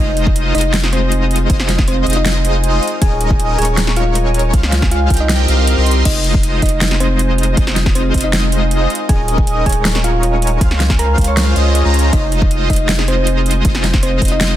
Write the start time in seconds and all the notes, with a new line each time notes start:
Already playing: F1 G#3 D#4 F4 G#4 A#4 C5 C#5 D#5 F5 G#5
0.08 C5
0.17 D#4, closed hi-hat
0.27 F5, kick
0.36 D#5, closed hi-hat
0.46 D#4
0.55 F1 G#3 D#4 F4 C5 D#5, closed hi-hat
0.58 closed hi-hat
0.61 D#4, closed hi-hat
0.74 snare, closed hi-hat
0.84 G#4, snare
0.93 C4 C5, closed hi-hat
1.03 G#4
1.12 D#5, closed hi-hat
1.22 F4
1.31 D#4, closed hi-hat
1.36 closed hi-hat
1.41 G#4
1.50 F1 G#3 D#4 F4 C5 D#5, kick, closed hi-hat, ride
1.60 C5, snare
1.69 D#4, snare, closed hi-hat
1.79 kick, snare
1.88 C4 C5 D#5, closed hi-hat
1.97 D#4
2.07 F1 G#3 D#4 F4 C5 D#5, closed hi-hat
2.10 closed hi-hat
2.13 D#4 D#5, closed hi-hat
2.26 snare, closed hi-hat
2.35 G#4
2.45 C5, closed hi-hat
2.55 G#4
2.64 D#5, closed hi-hat
2.73 F4
2.83 D#4, closed hi-hat
2.88 closed hi-hat
2.93 A#4
3.02 D#1 G#3 C#4 D#4 G#4 A#4 D#5 G#5, kick, closed hi-hat, ride
3.11 C#5
3.21 D#4, closed hi-hat
3.30 G#5, kick
3.40 D#5, closed hi-hat
3.49 D#4
3.58 D#1 G#3 C#4 D#4 G#4 A#4 C#5 G#5, closed hi-hat
3.62 closed hi-hat
3.65 D#4, closed hi-hat
3.77 D#4, snare, closed hi-hat
3.87 A#4, snare
3.96 F4 C#5 F5, closed hi-hat
4.06 A#4
4.15 D#5, closed hi-hat
4.25 G#4
4.34 D#4, closed hi-hat
4.39 closed hi-hat
4.44 A#4
4.53 C#2 G#3 C#4 F4 C5 F5, kick, closed hi-hat, ride
4.63 C#5, snare
4.72 F4, snare, closed hi-hat
4.82 G#5, kick, snare
4.91 F4 F5, closed hi-hat
5.01 F4
5.10 C2 C4 F4 G4 A#4 D#5 G5, kick, closed hi-hat
5.14 closed hi-hat
5.17 D#4 F4 D#5, closed hi-hat
5.29 snare, closed hi-hat
5.39 A#4
5.48 C2 C4 G4 A#4 C5 D#5 F5, closed hi-hat
5.58 A#4
5.67 D#5, closed hi-hat
5.77 C2 C4 G4 A#4 D#5 C6
5.86 D#4, closed hi-hat
5.91 closed hi-hat
5.96 A#4
6.05 F1 G#3 D#4 F4 C5 D#5, kick, closed hi-hat, crash, ride
6.15 C5
6.24 D#4, closed hi-hat
6.34 F5, kick
6.43 D#5, closed hi-hat
6.53 D#4
6.62 F1 G#3 D#4 F4 C5 D#5, kick, closed hi-hat
6.66 closed hi-hat
6.69 D#4, closed hi-hat
6.81 D#4, snare, closed hi-hat
6.91 G#4, snare
7.00 C4 C5, closed hi-hat
7.10 G#4
7.19 D#5, closed hi-hat
7.29 F4
7.38 D#4, closed hi-hat
7.43 closed hi-hat
7.48 G#4
7.57 F1 G#3 D#4 F4 C5 D#5, kick, closed hi-hat, ride
7.67 C5, snare
7.76 D#4, snare, closed hi-hat
7.86 F5, kick, snare
7.95 C4 C5 D#5, closed hi-hat
8.05 D#4
8.14 F1 G#3 D#4 F4 C5 D#5, kick, closed hi-hat
8.18 closed hi-hat
8.21 D#4 D#5, closed hi-hat
8.33 snare, closed hi-hat
8.43 G#4
8.52 C5, closed hi-hat
8.62 G#4
8.71 D#5, closed hi-hat
8.81 F4
8.90 D#4, closed hi-hat
8.95 closed hi-hat
9.00 A#4
9.09 D#1 G#3 C#4 D#4 G#4 A#4 D#5 G#5, kick, closed hi-hat, ride
9.19 C#5
9.28 D#4, closed hi-hat
9.38 G#5, kick
9.47 D#5, closed hi-hat
9.57 D#4
9.66 D#1 G#3 C#4 D#4 G#4 A#4 C#5 G#5, kick, closed hi-hat
9.69 closed hi-hat
9.72 D#4, closed hi-hat
9.85 D#4, snare, closed hi-hat
9.95 A#4, snare
10.04 F4 C#5 F5, closed hi-hat
10.14 A#4
10.23 D#5, closed hi-hat
10.33 G#4
10.42 D#4, closed hi-hat
10.47 closed hi-hat
10.52 A#4
10.61 C#2 G#3 C#4 F4 C5 F5, kick, closed hi-hat, ride
10.71 C#5, snare
10.80 F4, snare, closed hi-hat
10.90 G#5, kick, snare
10.99 A#4 F5 A#5, closed hi-hat
11.09 F4
11.18 C#2 G#3 C#4 F4 C5 F5, kick, closed hi-hat
11.21 closed hi-hat
11.24 F4 C#5 C#6, closed hi-hat
11.37 F4, snare, closed hi-hat
11.47 C5
11.56 C#2 G#3 C#4 F4 C5 C#5 D#5, closed hi-hat
11.66 F5
11.75 G#4, closed hi-hat
11.85 C#2 G#3 C#4 F4 C5 C#5 A#5
11.94 G#4, closed hi-hat
11.99 closed hi-hat
12.04 C#5
12.13 F1 G#3 D#4 F4 C5 D#5, kick, closed hi-hat, ride
12.23 C5
12.32 D#4, closed hi-hat
12.42 F5, kick
12.51 D#5, closed hi-hat
12.61 D#4
12.70 F1 G#3 D#4 F4 C5 D#5, kick, closed hi-hat
12.73 closed hi-hat
12.76 D#4, closed hi-hat
12.89 D#4, snare, closed hi-hat
12.99 G#4, snare
13.08 C4 C5, closed hi-hat
13.18 G#4
13.27 D#5, closed hi-hat
13.37 F4
13.46 D#4, closed hi-hat
13.51 closed hi-hat
13.56 G#4
13.65 F1 G#3 D#4 F4 C5 D#5, kick, closed hi-hat, ride
13.75 C5, snare
13.84 D#4, snare, closed hi-hat
13.94 F5, kick, snare
14.03 C4 C5 D#5, closed hi-hat
14.13 D#4
14.22 F1 G#3 D#4 F4 C5 D#5, kick, closed hi-hat
14.25 closed hi-hat
14.28 D#4 D#5, closed hi-hat
14.41 D#4, snare, closed hi-hat
14.51 G#4